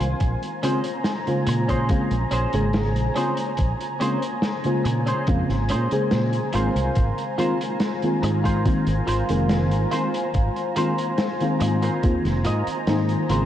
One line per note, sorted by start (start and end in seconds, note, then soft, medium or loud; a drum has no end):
0.00 0.13 C2 medium
0.00 0.16 F4 medium
0.00 0.17 C5 medium
0.00 0.17 G#5 medium
0.00 13.46 G#5 medium
0.00 0.17 C6 medium
0.00 closed hi-hat medium
0.20 0.34 A#1 loud
0.20 13.46 C5 medium
0.20 6.50 A#5 medium
0.20 kick loud
0.20 closed hi-hat medium
0.42 closed hi-hat soft
0.62 0.78 C#3 medium
0.62 0.79 G#3 medium
0.62 0.79 A#3 medium
0.62 0.79 C4 medium
0.62 0.85 C#4 medium
0.62 0.79 F4 medium
0.62 0.85 G#4 medium
0.62 0.86 C5 medium
0.62 closed hi-hat loud
0.84 closed hi-hat medium
1.04 snare loud
1.04 closed hi-hat medium
1.27 1.85 C#3 medium
1.27 1.85 G#3 medium
1.27 1.85 A#3 medium
1.27 1.85 F4 loud
1.27 1.85 C5 medium
1.27 closed hi-hat soft
1.47 1.89 A#2 medium
1.47 muted clean electric guitar stroke medium
1.47 closed hi-hat loud
1.68 1.89 C#4 medium
1.68 1.90 G#4 medium
1.68 1.90 C5 medium
1.68 kick medium
1.68 closed hi-hat medium
1.89 2.14 C#3 medium
1.89 2.14 G#3 medium
1.89 2.14 A#3 medium
1.89 2.15 C4 medium
1.89 2.15 F4 loud
1.89 muted fretless electric bass stroke soft
1.89 kick loud
1.89 closed hi-hat medium
2.11 2.24 A#1 medium
2.11 closed hi-hat soft
2.31 2.45 A#1 medium
2.31 2.53 C#4 medium
2.31 2.54 G#4 medium
2.31 2.54 C5 medium
2.31 closed hi-hat medium
2.53 2.96 G#1 medium
2.53 3.11 C#3 medium
2.53 3.12 G#3 medium
2.53 3.12 A#3 medium
2.53 3.12 G#4 loud
2.53 3.12 C5 medium
2.53 closed hi-hat medium
2.73 snare loud
2.73 closed hi-hat medium
2.96 3.08 A#1 medium
2.96 closed hi-hat soft
3.16 3.32 C#3 medium
3.16 3.32 G#3 medium
3.16 3.32 A#3 medium
3.16 3.32 C4 medium
3.16 3.38 C#4 medium
3.16 3.33 F4 medium
3.16 3.38 G#4 medium
3.16 3.39 C5 loud
3.16 closed hi-hat medium
3.37 closed hi-hat medium
3.57 3.72 A#1 loud
3.57 kick loud
3.57 closed hi-hat medium
3.80 closed hi-hat soft
4.00 4.16 C#3 medium
4.00 4.16 G#3 medium
4.00 4.17 A#3 medium
4.00 4.17 C4 medium
4.00 4.22 C#4 medium
4.00 4.17 F4 medium
4.00 4.23 G#4 medium
4.00 4.23 C5 medium
4.00 closed hi-hat medium
4.22 closed hi-hat medium
4.42 snare loud
4.42 closed hi-hat medium
4.64 5.22 C#3 medium
4.64 5.23 G#3 medium
4.64 5.23 A#3 medium
4.64 5.23 F4 loud
4.64 5.23 C5 medium
4.64 closed hi-hat soft
4.85 5.12 A#2 medium
4.85 muted clean electric guitar stroke medium
4.85 closed hi-hat loud
5.06 5.27 C#4 medium
5.06 5.28 G#4 medium
5.06 5.28 C5 medium
5.06 closed hi-hat medium
5.27 5.41 F2 medium
5.27 5.52 C#3 medium
5.27 5.52 G#3 medium
5.27 5.53 A#3 medium
5.27 5.53 C4 medium
5.27 5.53 F4 loud
5.27 kick loud
5.27 closed hi-hat medium
5.49 5.71 G#1 loud
5.49 snare soft
5.49 closed hi-hat soft
5.69 5.91 A#2 medium
5.69 5.92 C#4 medium
5.69 5.92 G#4 medium
5.69 5.93 C5 medium
5.69 closed hi-hat medium
5.91 6.49 C#3 medium
5.91 6.49 G#3 medium
5.91 6.50 A#3 medium
5.91 6.50 G#4 loud
5.91 6.50 C5 medium
5.91 muted fretless electric bass stroke soft
5.91 closed hi-hat medium
6.11 6.39 A#2 medium
6.11 snare loud
6.11 closed hi-hat medium
6.33 closed hi-hat soft
6.53 6.68 G#1 medium
6.53 6.70 D#3 medium
6.53 6.70 G#3 medium
6.53 6.70 A#3 medium
6.53 6.71 C4 medium
6.53 7.22 F4 medium
6.53 13.46 F4 medium
6.53 6.71 F4 medium
6.53 7.23 A#4 medium
6.53 7.23 C5 loud
6.53 13.46 A#5 medium
6.53 closed hi-hat loud
6.76 6.89 C2 medium
6.76 closed hi-hat medium
6.95 7.10 G#1 loud
6.95 kick loud
6.95 closed hi-hat medium
7.18 closed hi-hat soft
7.38 7.54 D#3 medium
7.38 7.54 G#3 medium
7.38 7.55 A#3 medium
7.38 7.54 C4 medium
7.38 7.60 F4 medium
7.38 7.55 F4 loud
7.38 7.61 A#4 medium
7.38 7.61 C5 medium
7.38 closed hi-hat medium
7.61 closed hi-hat medium
7.80 snare loud
7.80 closed hi-hat medium
8.02 8.61 D#3 medium
8.02 8.61 G#3 medium
8.02 8.61 A#3 medium
8.02 8.61 C4 medium
8.02 8.61 F4 loud
8.02 closed hi-hat soft
8.23 8.65 G#2 medium
8.23 muted clean electric guitar stroke medium
8.23 closed hi-hat medium
8.44 8.65 F4 medium
8.44 8.65 A#4 medium
8.44 8.66 C5 medium
8.44 kick medium
8.44 closed hi-hat medium
8.65 8.90 D#3 medium
8.65 8.90 G#3 medium
8.65 8.91 A#3 medium
8.65 8.91 C4 medium
8.65 8.91 F4 loud
8.65 muted fretless electric bass stroke soft
8.65 kick loud
8.65 closed hi-hat medium
8.87 9.00 G#1 loud
8.87 closed hi-hat soft
9.07 9.21 G#1 medium
9.07 9.29 F4 medium
9.07 9.30 A#4 medium
9.07 9.30 C5 loud
9.07 closed hi-hat loud
9.29 9.72 F1 medium
9.29 9.87 D#3 medium
9.29 9.87 G#3 medium
9.29 9.88 A#3 medium
9.29 9.88 C4 medium
9.29 9.88 A#4 loud
9.29 closed hi-hat medium
9.49 snare loud
9.49 closed hi-hat medium
9.71 9.85 G#1 medium
9.71 closed hi-hat soft
9.91 10.08 D#3 medium
9.91 10.08 G#3 medium
9.91 10.08 A#3 medium
9.91 10.08 C4 medium
9.91 10.14 F4 medium
9.91 10.09 F4 medium
9.91 10.14 A#4 medium
9.91 10.14 C5 loud
9.91 closed hi-hat medium
10.14 closed hi-hat medium
10.34 10.48 G#1 loud
10.34 kick loud
10.34 closed hi-hat medium
10.56 closed hi-hat soft
10.76 10.92 D#3 medium
10.76 10.92 G#3 medium
10.76 10.93 A#3 medium
10.76 10.93 C4 medium
10.76 10.98 F4 medium
10.76 10.93 F4 medium
10.76 10.99 A#4 medium
10.76 10.99 C5 medium
10.76 closed hi-hat loud
10.98 closed hi-hat medium
11.18 snare loud
11.18 closed hi-hat medium
11.40 11.98 D#3 medium
11.40 11.99 G#3 medium
11.40 11.99 A#3 medium
11.40 11.99 C4 medium
11.40 11.99 F4 loud
11.40 closed hi-hat soft
11.60 11.88 G#2 medium
11.60 muted clean electric guitar stroke medium
11.60 closed hi-hat loud
11.82 12.03 F4 medium
11.82 12.04 A#4 medium
11.82 12.04 C5 medium
11.82 closed hi-hat medium
12.03 12.17 D#2 medium
12.03 12.28 D#3 medium
12.03 12.29 G#3 medium
12.03 12.29 A#3 medium
12.03 12.29 C4 medium
12.03 12.29 F4 loud
12.03 kick loud
12.03 closed hi-hat medium
12.25 12.47 F1 medium
12.25 snare soft
12.25 closed hi-hat soft
12.45 12.67 G#2 medium
12.45 12.67 F4 medium
12.45 12.68 A#4 medium
12.45 12.68 D#5 medium
12.45 closed hi-hat medium
12.67 muted fretless electric bass stroke soft
12.67 closed hi-hat medium
12.87 13.15 G#2 medium
12.87 13.25 D#3 medium
12.87 13.25 G#3 medium
12.87 13.25 A#3 medium
12.87 13.26 C4 medium
12.87 13.26 D#4 loud
12.87 snare loud
12.87 closed hi-hat medium
13.09 closed hi-hat soft
13.30 13.44 G#1 medium
13.30 13.46 C#3 medium
13.30 13.46 G#3 medium
13.30 13.46 A#3 medium
13.30 13.46 C4 medium
13.30 13.46 F4 medium
13.30 13.46 A#4 medium
13.30 13.46 C5 medium
13.30 closed hi-hat medium